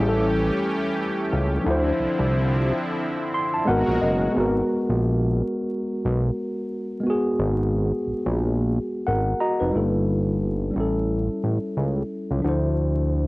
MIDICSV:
0, 0, Header, 1, 4, 480
1, 0, Start_track
1, 0, Tempo, 674157
1, 1170, Time_signature, 4, 2, 24, 8
1, 9449, End_track
2, 0, Start_track
2, 0, Title_t, "Tine electric piano"
2, 0, Program_c, 0, 4
2, 0, Note_on_c, 0, 55, 66
2, 0, Note_on_c, 0, 61, 61
2, 0, Note_on_c, 0, 64, 61
2, 15, Note_on_c, 0, 68, 62
2, 47, Note_off_c, 0, 68, 0
2, 62, Note_on_c, 0, 69, 75
2, 120, Control_c, 0, 64, 127
2, 1134, Note_off_c, 0, 55, 0
2, 1145, Note_off_c, 0, 61, 0
2, 1146, Note_on_c, 0, 53, 67
2, 1157, Note_off_c, 0, 64, 0
2, 1168, Note_on_c, 0, 62, 64
2, 1178, Control_c, 0, 64, 0
2, 1191, Note_on_c, 0, 64, 67
2, 1193, Note_off_c, 0, 69, 0
2, 1213, Note_on_c, 0, 72, 75
2, 1288, Control_c, 0, 64, 127
2, 2379, Note_on_c, 0, 84, 76
2, 2506, Note_off_c, 0, 84, 0
2, 2519, Note_on_c, 0, 81, 71
2, 2569, Note_off_c, 0, 53, 0
2, 2580, Note_off_c, 0, 62, 0
2, 2592, Note_off_c, 0, 64, 0
2, 2599, Note_on_c, 0, 56, 80
2, 2603, Note_off_c, 0, 72, 0
2, 2607, Note_off_c, 0, 81, 0
2, 2611, Note_on_c, 0, 59, 66
2, 2616, Note_on_c, 0, 78, 74
2, 2620, Control_c, 0, 64, 0
2, 2623, Note_on_c, 0, 66, 67
2, 2634, Note_on_c, 0, 70, 78
2, 2738, Control_c, 0, 64, 127
2, 2836, Note_off_c, 0, 78, 0
2, 2858, Note_on_c, 0, 75, 72
2, 3059, Note_off_c, 0, 56, 0
2, 3067, Note_on_c, 0, 56, 68
2, 3077, Note_off_c, 0, 75, 0
2, 3082, Note_off_c, 0, 59, 0
2, 3090, Note_on_c, 0, 59, 59
2, 3096, Note_off_c, 0, 66, 0
2, 3099, Control_c, 0, 64, 0
2, 3102, Note_off_c, 0, 70, 0
2, 3113, Note_on_c, 0, 66, 59
2, 3135, Note_on_c, 0, 70, 68
2, 3220, Control_c, 0, 64, 127
2, 4970, Note_off_c, 0, 56, 0
2, 4982, Note_off_c, 0, 59, 0
2, 4985, Note_on_c, 0, 56, 58
2, 4993, Note_off_c, 0, 66, 0
2, 5004, Note_off_c, 0, 70, 0
2, 5009, Note_on_c, 0, 59, 61
2, 5032, Note_on_c, 0, 66, 56
2, 5055, Note_on_c, 0, 68, 74
2, 6433, Note_off_c, 0, 66, 0
2, 6444, Note_off_c, 0, 68, 0
2, 6456, Note_on_c, 0, 78, 64
2, 6462, Note_on_c, 0, 70, 52
2, 6681, Note_off_c, 0, 78, 0
2, 6684, Note_off_c, 0, 70, 0
2, 6696, Note_on_c, 0, 82, 66
2, 6698, Note_on_c, 0, 75, 63
2, 6700, Note_on_c, 0, 66, 54
2, 6828, Note_off_c, 0, 75, 0
2, 6829, Note_off_c, 0, 66, 0
2, 6835, Note_on_c, 0, 71, 52
2, 6840, Note_on_c, 0, 63, 51
2, 6889, Note_off_c, 0, 56, 0
2, 6901, Note_off_c, 0, 59, 0
2, 6916, Note_off_c, 0, 82, 0
2, 6920, Note_on_c, 0, 55, 60
2, 6931, Note_on_c, 0, 57, 40
2, 6937, Control_c, 0, 64, 0
2, 6943, Note_on_c, 0, 65, 52
2, 6954, Note_on_c, 0, 69, 59
2, 6978, Note_on_c, 0, 58, 51
2, 6985, Note_off_c, 0, 57, 0
2, 7042, Control_c, 0, 64, 127
2, 7061, Note_off_c, 0, 71, 0
2, 7064, Note_off_c, 0, 63, 0
2, 7614, Note_off_c, 0, 55, 0
2, 7622, Note_on_c, 0, 55, 51
2, 7645, Note_on_c, 0, 61, 51
2, 7656, Note_off_c, 0, 65, 0
2, 7660, Control_c, 0, 64, 0
2, 7662, Note_off_c, 0, 69, 0
2, 7668, Note_on_c, 0, 64, 50
2, 7674, Note_off_c, 0, 58, 0
2, 7691, Note_on_c, 0, 69, 59
2, 7789, Control_c, 0, 64, 127
2, 8812, Note_off_c, 0, 55, 0
2, 8821, Note_on_c, 0, 53, 53
2, 8824, Note_off_c, 0, 61, 0
2, 8835, Note_off_c, 0, 64, 0
2, 8845, Note_on_c, 0, 62, 54
2, 8847, Note_off_c, 0, 69, 0
2, 8859, Control_c, 0, 64, 0
2, 8866, Note_on_c, 0, 64, 51
2, 8890, Note_on_c, 0, 72, 63
2, 8964, Control_c, 0, 64, 127
2, 9449, Note_off_c, 0, 53, 0
2, 9449, Note_off_c, 0, 62, 0
2, 9449, Note_off_c, 0, 64, 0
2, 9449, Note_off_c, 0, 72, 0
2, 9449, End_track
3, 0, Start_track
3, 0, Title_t, "Analog synth pad"
3, 0, Program_c, 1, 89
3, 0, Note_on_c, 1, 52, 82
3, 0, Note_on_c, 1, 57, 77
3, 0, Note_on_c, 1, 61, 81
3, 0, Note_on_c, 1, 67, 96
3, 1149, Note_off_c, 1, 67, 0
3, 1160, Note_off_c, 1, 52, 0
3, 1160, Note_off_c, 1, 57, 0
3, 1160, Note_off_c, 1, 61, 0
3, 1171, Note_on_c, 1, 60, 75
3, 1173, Note_on_c, 1, 53, 78
3, 1173, Note_on_c, 1, 64, 86
3, 1174, Note_on_c, 1, 50, 85
3, 2596, Note_off_c, 1, 60, 0
3, 2597, Note_off_c, 1, 50, 0
3, 2597, Note_off_c, 1, 53, 0
3, 2597, Note_off_c, 1, 64, 0
3, 2609, Note_on_c, 1, 56, 66
3, 2609, Note_on_c, 1, 66, 81
3, 2609, Note_on_c, 1, 70, 64
3, 2611, Note_on_c, 1, 47, 73
3, 3085, Note_off_c, 1, 56, 0
3, 3085, Note_off_c, 1, 66, 0
3, 3085, Note_off_c, 1, 70, 0
3, 3086, Note_off_c, 1, 47, 0
3, 9449, End_track
4, 0, Start_track
4, 0, Title_t, "Analog synth bass"
4, 0, Program_c, 2, 38
4, 0, Note_on_c, 2, 33, 109
4, 361, Note_off_c, 2, 33, 0
4, 944, Note_on_c, 2, 37, 80
4, 1130, Note_off_c, 2, 37, 0
4, 1182, Note_on_c, 2, 38, 111
4, 1369, Note_off_c, 2, 38, 0
4, 1422, Note_on_c, 2, 36, 50
4, 1476, Note_off_c, 2, 36, 0
4, 1561, Note_on_c, 2, 36, 92
4, 1939, Note_off_c, 2, 36, 0
4, 2622, Note_on_c, 2, 32, 105
4, 2729, Note_off_c, 2, 32, 0
4, 2763, Note_on_c, 2, 34, 78
4, 2837, Note_off_c, 2, 34, 0
4, 2865, Note_on_c, 2, 30, 91
4, 3050, Note_off_c, 2, 30, 0
4, 3107, Note_on_c, 2, 32, 104
4, 3291, Note_off_c, 2, 32, 0
4, 3485, Note_on_c, 2, 34, 90
4, 3862, Note_off_c, 2, 34, 0
4, 4309, Note_on_c, 2, 35, 98
4, 4493, Note_off_c, 2, 35, 0
4, 5263, Note_on_c, 2, 32, 96
4, 5640, Note_off_c, 2, 32, 0
4, 5744, Note_on_c, 2, 34, 48
4, 5797, Note_off_c, 2, 34, 0
4, 5882, Note_on_c, 2, 34, 95
4, 6260, Note_off_c, 2, 34, 0
4, 6465, Note_on_c, 2, 32, 91
4, 6650, Note_off_c, 2, 32, 0
4, 6844, Note_on_c, 2, 29, 96
4, 6917, Note_off_c, 2, 29, 0
4, 6945, Note_on_c, 2, 31, 85
4, 7629, Note_off_c, 2, 31, 0
4, 7662, Note_on_c, 2, 33, 91
4, 8039, Note_off_c, 2, 33, 0
4, 8143, Note_on_c, 2, 33, 73
4, 8250, Note_off_c, 2, 33, 0
4, 8380, Note_on_c, 2, 37, 82
4, 8567, Note_off_c, 2, 37, 0
4, 8763, Note_on_c, 2, 37, 79
4, 8837, Note_off_c, 2, 37, 0
4, 8860, Note_on_c, 2, 38, 92
4, 9449, Note_off_c, 2, 38, 0
4, 9449, End_track
0, 0, End_of_file